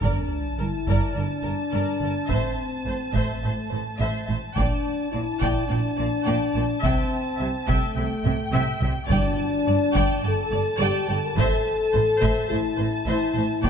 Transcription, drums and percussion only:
0.02 taiko medium
0.87 taiko medium
2.29 taiko medium
3.15 taiko medium
4.56 taiko medium
5.42 taiko medium
6.83 taiko medium
7.69 taiko medium
8.25 taiko mid medium
8.54 taiko mid medium
8.82 taiko low medium
9.10 taiko medium
9.96 taiko medium
11.37 taiko medium
12.22 taiko medium
13.64 taiko medium

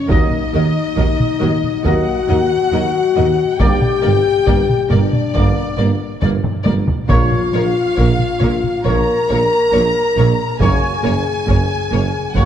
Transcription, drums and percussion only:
0.09 taiko medium
0.31 taiko mid soft
0.97 taiko medium
1.20 taiko mid soft
1.42 taiko mid medium
1.64 taiko mid soft
1.85 taiko medium
3.60 taiko medium
3.81 taiko mid soft
4.47 taiko medium
4.69 taiko mid soft
4.91 taiko mid medium
5.13 taiko mid soft
5.35 taiko medium
6.22 taiko low-mid medium
6.44 taiko low-mid medium
6.66 taiko high medium
6.87 taiko low medium
7.09 taiko medium
7.32 taiko mid soft
7.97 taiko medium
8.20 taiko mid soft
8.41 taiko mid medium
8.64 taiko mid soft
8.86 taiko medium
10.60 taiko medium
11.48 taiko medium
12.35 taiko medium

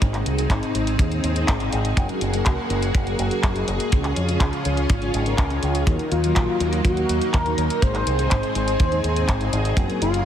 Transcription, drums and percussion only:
0.02 kick loud
0.02 closed hi-hat medium
0.14 clap soft
0.14 closed hi-hat soft
0.26 closed hi-hat medium
0.38 closed hi-hat soft
0.50 kick loud
0.50 clap loud
0.50 closed hi-hat medium
0.63 closed hi-hat soft
0.75 closed hi-hat medium
0.87 closed hi-hat medium
0.99 kick loud
0.99 closed hi-hat medium
1.12 closed hi-hat soft
1.24 closed hi-hat medium
1.36 closed hi-hat soft
1.48 kick loud
1.48 clap loud
1.48 closed hi-hat medium
1.60 closed hi-hat soft
1.73 closed hi-hat medium
1.85 closed hi-hat medium
1.97 kick loud
1.97 closed hi-hat medium
2.09 closed hi-hat soft
2.21 closed hi-hat medium
2.33 closed hi-hat medium
2.46 kick loud
2.46 clap loud
2.46 closed hi-hat medium
2.70 closed hi-hat medium
2.82 closed hi-hat soft
2.95 kick loud
2.95 closed hi-hat medium
3.07 closed hi-hat soft
3.19 closed hi-hat medium
3.31 closed hi-hat soft
3.43 kick loud
3.43 clap loud
3.43 closed hi-hat medium
3.56 closed hi-hat soft
3.68 closed hi-hat medium
3.80 closed hi-hat soft
3.92 kick loud
3.92 closed hi-hat medium
4.04 clap soft
4.04 closed hi-hat soft
4.16 closed hi-hat medium
4.29 closed hi-hat soft
4.40 kick loud
4.40 clap loud
4.40 closed hi-hat medium
4.53 closed hi-hat soft
4.65 closed hi-hat medium
4.77 closed hi-hat soft
4.90 kick loud
4.90 closed hi-hat medium
5.02 closed hi-hat soft
5.14 closed hi-hat medium
5.26 closed hi-hat soft
5.38 kick loud
5.38 clap loud
5.38 closed hi-hat medium
5.50 closed hi-hat soft
5.63 closed hi-hat medium
5.75 closed hi-hat soft
5.87 kick loud
5.87 closed hi-hat medium
5.99 closed hi-hat soft
6.12 closed hi-hat medium
6.24 closed hi-hat soft
6.36 kick loud
6.36 clap loud
6.36 closed hi-hat medium
6.60 closed hi-hat medium
6.73 closed hi-hat soft
6.85 kick loud
6.85 closed hi-hat medium
6.97 closed hi-hat soft
7.09 closed hi-hat medium
7.21 closed hi-hat soft
7.34 kick loud
7.34 clap loud
7.34 closed hi-hat medium
7.46 closed hi-hat soft
7.58 closed hi-hat medium
7.70 closed hi-hat soft
7.82 kick loud
7.82 closed hi-hat medium
7.95 clap soft
7.95 closed hi-hat soft
8.07 closed hi-hat medium
8.19 closed hi-hat soft
8.31 kick loud
8.31 clap loud
8.31 closed hi-hat medium
8.43 closed hi-hat soft
8.55 closed hi-hat medium
8.68 closed hi-hat soft
8.80 kick loud
8.80 closed hi-hat medium
8.92 closed hi-hat soft
9.04 closed hi-hat medium
9.16 closed hi-hat soft
9.29 kick loud
9.29 clap loud
9.29 closed hi-hat medium
9.41 closed hi-hat soft
9.53 closed hi-hat medium
9.65 closed hi-hat medium
9.77 kick loud
9.77 closed hi-hat medium
9.90 closed hi-hat soft
10.02 closed hi-hat medium
10.14 closed hi-hat medium

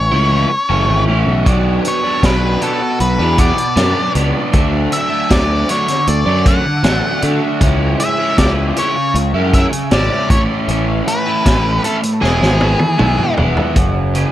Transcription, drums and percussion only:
1.46 kick loud
1.46 closed hi-hat medium
1.85 closed hi-hat medium
2.23 kick medium
2.23 snare loud
2.23 closed hi-hat medium
2.62 closed hi-hat medium
3.00 closed hi-hat medium
3.38 kick medium
3.38 closed hi-hat medium
3.58 closed hi-hat medium
3.77 snare medium
3.77 closed hi-hat medium
4.15 closed hi-hat medium
4.53 kick loud
4.53 closed hi-hat medium
4.92 closed hi-hat medium
5.30 kick medium
5.30 snare loud
5.30 closed hi-hat medium
5.69 closed hi-hat medium
5.88 snare soft
5.88 closed hi-hat medium
6.07 closed hi-hat medium
6.46 kick medium
6.46 closed hi-hat medium
6.84 snare loud
6.84 closed hi-hat medium
7.22 closed hi-hat medium
7.61 kick medium
7.61 closed hi-hat medium
8.00 closed hi-hat medium
8.38 kick medium
8.38 snare loud
8.38 closed hi-hat medium
8.77 closed hi-hat medium
9.15 closed hi-hat medium
9.53 kick medium
9.53 closed hi-hat medium
9.73 closed hi-hat medium
9.91 snare loud
9.91 closed hi-hat medium
10.30 kick medium
10.30 closed hi-hat medium
10.69 closed hi-hat medium
11.08 closed hi-hat medium
11.46 kick medium
11.46 snare medium
11.46 closed hi-hat medium
11.84 closed hi-hat medium
12.03 closed hi-hat medium
12.24 snare soft
12.43 snare medium
12.61 high tom medium
12.79 high tom medium
12.99 mid tom medium
13.18 mid tom medium
13.37 floor tom medium
13.57 floor tom medium
13.76 kick medium
13.76 closed hi-hat medium
14.15 closed hi-hat medium

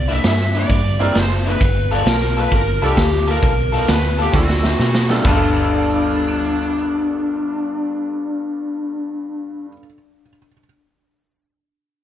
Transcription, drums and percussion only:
0.09 closed hi-hat medium
0.24 snare loud
0.24 closed hi-hat medium
0.54 closed hi-hat medium
0.70 kick loud
0.70 closed hi-hat medium
1.01 closed hi-hat medium
1.15 snare medium
1.15 closed hi-hat medium
1.46 closed hi-hat medium
1.61 kick loud
1.61 closed hi-hat medium
1.92 closed hi-hat medium
2.06 snare loud
2.06 closed hi-hat medium
2.37 closed hi-hat medium
2.52 kick medium
2.52 closed hi-hat medium
2.82 closed hi-hat soft
2.97 kick medium
2.97 snare medium
2.97 closed hi-hat medium
3.27 closed hi-hat medium
3.43 kick loud
3.43 closed hi-hat medium
3.73 closed hi-hat medium
3.88 snare loud
3.88 closed hi-hat medium
4.19 closed hi-hat medium
4.34 kick loud
4.34 snare medium
4.49 snare medium
4.64 snare medium
4.80 snare medium
4.95 snare medium
5.10 snare medium
5.25 kick loud
5.25 floor tom medium
5.25 crash medium

